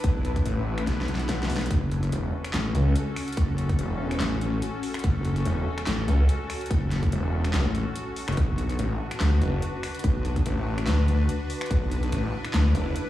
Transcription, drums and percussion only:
0.04 kick loud
0.04 closed hi-hat medium
0.25 closed hi-hat medium
0.36 kick medium
0.36 closed hi-hat soft
0.46 closed hi-hat medium
0.78 finger snap medium
0.78 closed hi-hat medium
0.87 snare medium
0.87 closed hi-hat medium
1.01 snare medium
1.08 closed hi-hat medium
1.15 snare medium
1.19 closed hi-hat soft
1.29 snare medium
1.29 closed hi-hat medium
1.43 snare loud
1.50 open hi-hat loud
1.57 snare loud
1.61 closed hi-hat medium
1.66 closed hi-hat medium
1.71 kick loud
1.71 closed hi-hat medium
1.91 closed hi-hat medium
2.03 closed hi-hat soft
2.12 closed hi-hat medium
2.44 finger snap medium
2.44 closed hi-hat medium
2.54 snare loud
2.54 clap medium
2.54 closed hi-hat medium
2.75 closed hi-hat medium
2.96 closed hi-hat medium
3.16 finger snap soft
3.16 open hi-hat loud
3.28 closed hi-hat soft
3.32 closed hi-hat medium
3.37 kick loud
3.37 closed hi-hat medium
3.58 closed hi-hat medium
3.69 kick medium
3.69 closed hi-hat soft
3.79 closed hi-hat medium
4.11 finger snap medium
4.11 closed hi-hat medium
4.20 snare loud
4.20 clap medium
4.20 closed hi-hat medium
4.41 closed hi-hat medium
4.62 closed hi-hat medium
4.83 open hi-hat medium
4.94 finger snap medium
4.94 closed hi-hat soft
4.99 closed hi-hat medium
5.04 kick loud
5.04 closed hi-hat medium
5.25 closed hi-hat medium
5.36 closed hi-hat soft
5.45 closed hi-hat medium
5.78 finger snap medium
5.78 closed hi-hat medium
5.87 snare loud
5.87 clap medium
5.87 closed hi-hat medium
6.08 closed hi-hat medium
6.29 closed hi-hat medium
6.50 finger snap medium
6.50 open hi-hat medium
6.61 closed hi-hat soft
6.66 closed hi-hat medium
6.71 kick loud
6.71 closed hi-hat medium
6.91 snare medium
6.91 closed hi-hat soft
7.03 kick medium
7.03 closed hi-hat soft
7.12 closed hi-hat medium
7.45 finger snap medium
7.45 closed hi-hat soft
7.54 snare loud
7.54 clap medium
7.54 closed hi-hat medium
7.75 closed hi-hat soft
7.96 closed hi-hat medium
8.16 open hi-hat medium
8.28 finger snap medium
8.28 closed hi-hat soft
8.32 closed hi-hat medium
8.37 kick loud
8.37 closed hi-hat medium
8.58 closed hi-hat soft
8.69 closed hi-hat soft
8.79 closed hi-hat medium
9.11 finger snap medium
9.11 closed hi-hat medium
9.21 snare loud
9.21 clap medium
9.21 closed hi-hat medium
9.42 closed hi-hat soft
9.62 closed hi-hat medium
9.83 finger snap medium
9.83 open hi-hat medium
9.95 closed hi-hat soft
9.99 closed hi-hat medium
10.04 kick loud
10.04 closed hi-hat medium
10.25 closed hi-hat soft
10.36 kick medium
10.36 closed hi-hat soft
10.46 closed hi-hat medium
10.78 finger snap medium
10.78 closed hi-hat medium
10.87 snare loud
10.87 clap medium
10.87 closed hi-hat medium
11.08 closed hi-hat medium
11.29 closed hi-hat medium
11.50 open hi-hat loud
11.61 finger snap medium
11.61 closed hi-hat medium
11.66 closed hi-hat medium
11.71 kick loud
11.71 closed hi-hat medium
11.91 closed hi-hat medium
12.03 closed hi-hat soft
12.12 closed hi-hat medium
12.45 finger snap medium
12.45 closed hi-hat medium
12.54 snare loud
12.54 clap medium
12.54 closed hi-hat medium
12.75 closed hi-hat medium
12.96 closed hi-hat medium

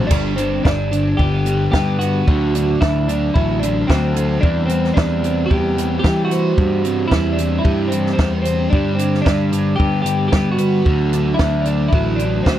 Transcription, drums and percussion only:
0.11 kick medium
0.11 crash medium
0.38 closed hi-hat medium
0.65 kick loud
0.65 snare loud
0.93 closed hi-hat medium
1.19 kick medium
1.46 closed hi-hat medium
1.73 kick medium
1.73 snare medium
2.01 closed hi-hat medium
2.28 kick loud
2.55 closed hi-hat medium
2.82 kick loud
2.82 snare loud
3.09 closed hi-hat medium
3.36 kick medium
3.63 closed hi-hat medium
3.90 kick medium
3.90 snare loud
4.16 closed hi-hat medium
4.43 kick loud
4.69 closed hi-hat medium
4.84 snare soft
4.97 kick loud
4.97 snare loud
5.24 closed hi-hat medium
5.51 kick medium
5.78 closed hi-hat medium
6.04 kick loud
6.04 snare loud
6.31 closed hi-hat medium
6.58 kick loud
6.85 closed hi-hat medium
7.11 kick loud
7.11 snare loud
7.38 closed hi-hat medium
7.65 kick medium
7.92 closed hi-hat medium
8.06 snare soft
8.19 kick loud
8.19 snare medium
8.45 closed hi-hat medium
8.73 kick loud
8.99 closed hi-hat medium
9.14 snare soft
9.26 kick loud
9.26 snare loud
9.53 closed hi-hat medium
9.80 kick medium
10.06 closed hi-hat medium
10.32 kick loud
10.32 snare loud
10.58 closed hi-hat medium
10.86 kick loud
11.13 closed hi-hat medium
11.39 kick loud
11.39 snare loud
11.65 closed hi-hat medium
11.93 kick loud
12.19 closed hi-hat medium
12.46 kick medium
12.46 snare loud

